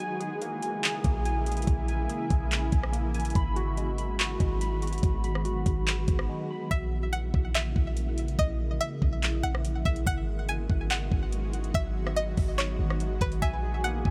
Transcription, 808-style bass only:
0, 0, Header, 1, 2, 480
1, 0, Start_track
1, 0, Time_signature, 4, 2, 24, 8
1, 0, Tempo, 419580
1, 16136, End_track
2, 0, Start_track
2, 0, Title_t, "808-style bass"
2, 0, Program_c, 0, 38
2, 1195, Note_on_c, 0, 34, 104
2, 1886, Note_off_c, 0, 34, 0
2, 1915, Note_on_c, 0, 34, 105
2, 2375, Note_off_c, 0, 34, 0
2, 2637, Note_on_c, 0, 34, 98
2, 3097, Note_off_c, 0, 34, 0
2, 3117, Note_on_c, 0, 34, 104
2, 3807, Note_off_c, 0, 34, 0
2, 3837, Note_on_c, 0, 32, 108
2, 4990, Note_off_c, 0, 32, 0
2, 5037, Note_on_c, 0, 32, 103
2, 5727, Note_off_c, 0, 32, 0
2, 5755, Note_on_c, 0, 32, 105
2, 6446, Note_off_c, 0, 32, 0
2, 6476, Note_on_c, 0, 32, 102
2, 6936, Note_off_c, 0, 32, 0
2, 6955, Note_on_c, 0, 32, 103
2, 7185, Note_off_c, 0, 32, 0
2, 7676, Note_on_c, 0, 34, 110
2, 8367, Note_off_c, 0, 34, 0
2, 8396, Note_on_c, 0, 34, 103
2, 8856, Note_off_c, 0, 34, 0
2, 8876, Note_on_c, 0, 34, 102
2, 9567, Note_off_c, 0, 34, 0
2, 9595, Note_on_c, 0, 34, 107
2, 10056, Note_off_c, 0, 34, 0
2, 10316, Note_on_c, 0, 34, 106
2, 10776, Note_off_c, 0, 34, 0
2, 10795, Note_on_c, 0, 34, 101
2, 11255, Note_off_c, 0, 34, 0
2, 11273, Note_on_c, 0, 34, 108
2, 11504, Note_off_c, 0, 34, 0
2, 11515, Note_on_c, 0, 32, 108
2, 12206, Note_off_c, 0, 32, 0
2, 12237, Note_on_c, 0, 32, 99
2, 12696, Note_off_c, 0, 32, 0
2, 12715, Note_on_c, 0, 32, 107
2, 13406, Note_off_c, 0, 32, 0
2, 13435, Note_on_c, 0, 32, 107
2, 14126, Note_off_c, 0, 32, 0
2, 14157, Note_on_c, 0, 32, 102
2, 14616, Note_off_c, 0, 32, 0
2, 14634, Note_on_c, 0, 32, 104
2, 15095, Note_off_c, 0, 32, 0
2, 15114, Note_on_c, 0, 32, 109
2, 15344, Note_off_c, 0, 32, 0
2, 15355, Note_on_c, 0, 34, 110
2, 16046, Note_off_c, 0, 34, 0
2, 16077, Note_on_c, 0, 34, 101
2, 16136, Note_off_c, 0, 34, 0
2, 16136, End_track
0, 0, End_of_file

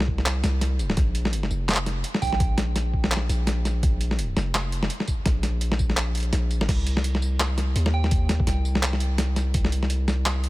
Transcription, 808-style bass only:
0, 0, Header, 1, 2, 480
1, 0, Start_track
1, 0, Key_signature, -3, "minor"
1, 0, Tempo, 357143
1, 1305, Time_signature, 4, 2, 24, 8
1, 14100, End_track
2, 0, Start_track
2, 0, Title_t, "808-style bass"
2, 0, Program_c, 0, 38
2, 0, Note_on_c, 0, 36, 101
2, 569, Note_off_c, 0, 36, 0
2, 585, Note_on_c, 0, 36, 98
2, 1289, Note_off_c, 0, 36, 0
2, 1306, Note_on_c, 0, 34, 99
2, 2009, Note_off_c, 0, 34, 0
2, 2024, Note_on_c, 0, 29, 99
2, 2729, Note_off_c, 0, 29, 0
2, 2986, Note_on_c, 0, 34, 95
2, 4409, Note_off_c, 0, 34, 0
2, 4424, Note_on_c, 0, 34, 99
2, 5128, Note_off_c, 0, 34, 0
2, 5148, Note_on_c, 0, 34, 102
2, 5850, Note_off_c, 0, 34, 0
2, 5868, Note_on_c, 0, 29, 100
2, 6570, Note_off_c, 0, 29, 0
2, 7065, Note_on_c, 0, 34, 98
2, 8489, Note_off_c, 0, 34, 0
2, 8506, Note_on_c, 0, 34, 99
2, 8970, Note_off_c, 0, 34, 0
2, 8983, Note_on_c, 0, 36, 101
2, 10408, Note_off_c, 0, 36, 0
2, 10423, Note_on_c, 0, 39, 101
2, 11368, Note_off_c, 0, 39, 0
2, 11385, Note_on_c, 0, 36, 97
2, 12809, Note_off_c, 0, 36, 0
2, 12827, Note_on_c, 0, 36, 100
2, 14100, Note_off_c, 0, 36, 0
2, 14100, End_track
0, 0, End_of_file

